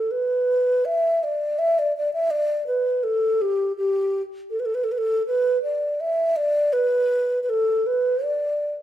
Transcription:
0.00 0.13 A4 medium
0.11 0.87 B4 medium
0.85 1.25 E5 loud
1.24 1.60 D5 medium
1.59 1.80 E5 loud
1.79 1.96 D5 medium
1.98 2.13 D5 medium
2.13 2.32 E5 medium
2.31 2.67 D5 loud
2.67 3.05 B4 medium
3.04 3.43 A4 medium
3.42 3.76 G4 medium
3.77 4.22 G4 loud
4.51 4.61 A4 medium
4.60 4.67 B4 medium
4.65 4.76 A4 medium
4.75 4.85 B4 medium
4.84 4.93 A4 medium
4.92 5.00 B4 medium
4.98 5.25 A4 medium
5.27 5.61 B4 medium
5.63 6.02 D5 medium
6.00 6.38 E5 medium
6.36 6.74 D5 loud
6.73 7.42 B4 loud
7.43 7.51 B4 medium
7.49 7.88 A4 medium
7.87 8.25 B4 medium
8.24 8.73 D5 medium

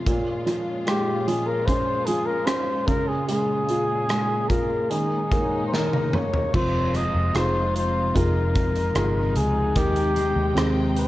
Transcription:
0.00 4.87 F4 medium
0.06 2.85 A#2 medium
0.06 2.84 A#2 medium
0.06 4.86 G#3 medium
0.06 4.87 C#4 medium
0.06 kick medium
0.06 closed hi-hat medium
0.46 1.26 F3 soft
0.46 cross-stick soft
0.46 closed hi-hat medium
0.87 2.43 G#3 soft
0.87 1.29 G4 medium
0.87 cross-stick medium
0.87 closed hi-hat medium
1.27 2.06 F3 soft
1.27 1.48 G#4 medium
1.27 closed hi-hat medium
1.46 1.67 A#4 medium
1.65 2.45 C#4 medium
1.65 2.07 C5 medium
1.65 kick medium
1.65 closed hi-hat medium
2.06 2.86 F3 medium
2.06 2.27 G#4 medium
2.06 closed hi-hat medium
2.26 2.47 A#4 medium
2.46 2.86 C#4 soft
2.46 2.88 C5 medium
2.46 cross-stick loud
2.46 closed hi-hat medium
2.87 6.51 A#2 medium
2.87 4.86 C#3 medium
2.87 3.09 A#4 medium
2.87 kick medium
2.87 closed hi-hat medium
3.08 3.27 G#4 medium
3.27 4.07 G#3 soft
3.27 4.50 G#4 medium
3.27 closed hi-hat medium
3.69 4.48 F4 soft
3.69 closed hi-hat medium
4.09 4.88 G#3 soft
4.09 cross-stick medium
4.09 closed hi-hat medium
4.49 4.89 F4 soft
4.49 4.92 A#4 medium
4.49 kick medium
4.49 closed hi-hat medium
4.90 5.71 D#3 medium
4.90 6.52 G#3 medium
4.90 6.52 C#4 medium
4.90 6.52 D#4 medium
4.90 5.65 G#4 medium
4.90 closed hi-hat medium
5.31 6.12 A#3 soft
5.31 kick medium
5.31 closed hi-hat medium
5.67 5.76 C5 medium
5.72 6.52 D#3 soft
5.72 6.16 A#4 medium
5.72 snare soft
5.93 high tom soft
6.13 6.53 A#3 soft
6.13 6.55 C#5 medium
6.13 mid tom medium
6.34 floor tom medium
6.53 7.11 F1 medium
6.53 9.77 F2 medium
6.53 11.08 C3 medium
6.53 9.73 F3 soft
6.53 11.08 G#3 medium
6.53 11.08 D#4 medium
6.53 9.73 F4 medium
6.53 6.98 C5 medium
6.53 kick medium
6.53 crash medium
6.94 8.96 G#3 medium
6.94 7.36 D#5 medium
6.94 cross-stick soft
6.94 closed hi-hat medium
7.14 7.34 F1 medium
7.34 8.12 F1 medium
7.34 10.57 C4 soft
7.34 8.13 D#4 soft
7.34 8.13 F4 soft
7.34 8.13 G#4 soft
7.34 7.74 C5 medium
7.34 cross-stick medium
7.34 closed hi-hat medium
7.76 8.17 C5 medium
7.76 closed hi-hat medium
8.15 8.92 F1 medium
8.15 8.93 D#4 soft
8.15 8.93 F4 soft
8.15 8.94 G#4 soft
8.15 9.38 A#4 medium
8.15 kick medium
8.15 closed hi-hat medium
8.55 kick medium
8.55 closed hi-hat medium
8.75 closed hi-hat soft
8.95 9.33 G1 medium
8.95 10.16 G#3 medium
8.95 9.74 D#4 soft
8.95 9.74 F4 soft
8.95 9.74 G#4 soft
8.95 cross-stick medium
8.95 closed hi-hat medium
9.36 9.74 C#2 medium
9.36 9.79 G#4 medium
9.36 closed hi-hat medium
9.76 10.33 D#2 medium
9.76 11.08 D#3 medium
9.76 10.71 G4 medium
9.76 11.08 G5 medium
9.76 kick medium
9.76 closed hi-hat medium
9.96 closed hi-hat soft
10.16 11.08 G#3 medium
10.16 closed hi-hat medium
10.36 10.55 D#2 medium
10.55 11.08 D#2 medium
10.55 11.08 C4 soft
10.55 11.08 C4 medium
10.55 11.08 G4 soft
10.55 11.08 G#4 soft
10.55 cross-stick loud
10.55 closed hi-hat medium
10.97 11.08 C5 loud
10.97 closed hi-hat medium

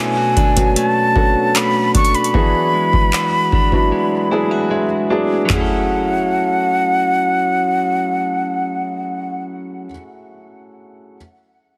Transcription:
0.00 2.34 B2 medium
0.00 0.56 F#3 loud
0.00 0.75 A3 medium
0.00 0.57 B3 loud
0.00 0.57 C#4 loud
0.00 0.58 D4 loud
0.00 0.17 E4 medium
0.00 1.17 A4 loud
0.00 0.78 G#5 medium
0.17 1.15 F#4 medium
0.37 1.94 D4 medium
0.37 kick medium
0.37 closed hi-hat soft
0.56 0.95 F#3 medium
0.56 0.95 B3 medium
0.56 0.96 C#4 medium
0.56 0.96 D4 medium
0.56 0.96 F#4 medium
0.56 kick medium
0.56 closed hi-hat medium
0.76 1.54 A3 medium
0.76 1.58 A5 loud
0.76 closed hi-hat medium
1.15 1.93 F#3 medium
1.15 1.93 B3 medium
1.15 1.94 C#4 medium
1.15 1.94 D4 medium
1.15 2.34 F#4 medium
1.15 1.94 A4 medium
1.15 kick loud
1.55 2.42 A3 medium
1.55 1.95 B5 medium
1.55 clap loud
1.55 closed hi-hat medium
1.95 2.77 D4 medium
1.95 2.17 C#6 loud
1.95 kick loud
1.95 closed hi-hat medium
2.05 closed hi-hat medium
2.14 4.71 B5 loud
2.14 closed hi-hat soft
2.24 closed hi-hat soft
2.34 5.84 E3 medium
2.34 3.24 F#3 medium
2.34 3.25 B3 medium
2.34 3.25 D4 medium
2.34 3.25 E4 medium
2.34 3.13 F#4 medium
2.34 3.25 G#4 loud
2.34 kick loud
2.74 3.91 G#3 medium
2.93 kick medium
3.13 4.31 F#4 medium
3.13 clap loud
3.52 5.09 D4 medium
3.52 kick medium
3.72 4.11 F#3 medium
3.72 4.11 B3 medium
3.72 4.11 D4 medium
3.72 4.12 E4 medium
3.72 4.12 F#4 medium
3.72 kick medium
3.92 4.70 G#3 medium
4.31 4.83 F#3 medium
4.31 4.83 B3 medium
4.31 4.83 D4 medium
4.31 4.51 E4 medium
4.31 4.84 E4 medium
4.31 4.84 G#4 medium
4.31 4.68 G#5 medium
4.51 5.56 F#4 medium
4.71 5.45 G#3 medium
4.71 5.46 E5 medium
5.10 5.36 F#3 medium
5.10 5.36 B3 medium
5.10 5.51 D4 medium
5.10 5.37 D4 medium
5.10 5.37 E4 medium
5.10 5.37 G#4 medium
5.45 9.87 F#3 medium
5.45 9.85 F#3 medium
5.45 9.87 A3 medium
5.50 9.93 C#4 medium
5.50 9.42 F#5 medium
5.50 kick medium
5.50 clap medium
5.50 floor tom medium
5.54 9.98 E4 medium
5.54 9.92 G#4 medium
5.61 10.02 A4 medium

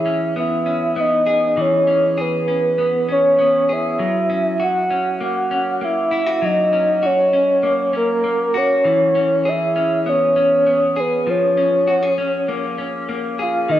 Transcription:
0.00 1.56 E3 medium
0.00 1.26 G#4 medium
0.00 0.34 E5 medium
0.05 0.66 C#4 medium
0.36 0.95 B3 medium
0.36 1.02 E5 loud
0.66 1.87 C#4 medium
0.96 2.77 B3 medium
0.96 1.62 D#5 loud
1.27 2.17 G#4 medium
1.57 3.99 E3 medium
1.57 2.20 C#5 loud
1.87 2.48 C#4 medium
2.18 3.68 G#4 medium
2.18 3.06 B4 medium
2.48 3.08 C#4 medium
2.78 3.37 B3 medium
3.08 4.29 C#4 medium
3.08 3.74 C#5 loud
3.39 4.05 B3 medium
3.69 4.06 G#4 medium
3.69 4.65 E5 loud
3.99 6.41 F#3 medium
4.30 4.90 C#4 medium
4.60 6.11 F#4 medium
4.60 5.23 F#5 loud
4.91 5.51 C#4 medium
5.20 5.80 A#3 medium
5.20 5.86 F#5 loud
5.51 6.72 C#4 medium
5.81 7.62 A#3 medium
5.81 6.46 E5 medium
6.11 6.27 E4 medium
6.27 7.01 F#4 soft
6.42 8.84 F#3 medium
6.42 7.07 D#5 loud
6.73 7.33 C#4 medium
7.03 8.53 F#4 medium
7.03 7.95 C#5 loud
7.33 7.93 C#4 medium
7.63 8.23 A#3 medium
7.93 9.15 C#4 medium
7.93 8.59 A#4 loud
8.24 8.90 A#3 medium
8.54 8.91 F#4 medium
8.54 9.50 C#5 loud
8.85 11.26 E3 medium
9.15 9.75 C#4 medium
9.45 10.96 G#4 medium
9.45 10.10 E5 loud
9.76 10.36 C#4 medium
10.06 10.65 B3 medium
10.06 11.01 C#5 medium
10.36 11.57 C#4 medium
10.66 11.33 B3 medium
10.97 11.87 G#4 medium
10.97 11.31 B4 medium
11.27 13.69 F3 medium
11.27 13.10 C#5 loud
11.57 12.17 C#4 medium
11.88 12.03 F#4 medium
12.03 13.38 G#4 medium
12.18 12.77 C#4 medium
12.48 13.08 A#3 medium
12.78 13.75 C#4 medium
13.09 13.76 A#3 medium
13.39 13.80 G#4 medium
13.39 13.73 F5 medium
13.69 13.80 D#3 medium
13.69 13.80 D#5 loud

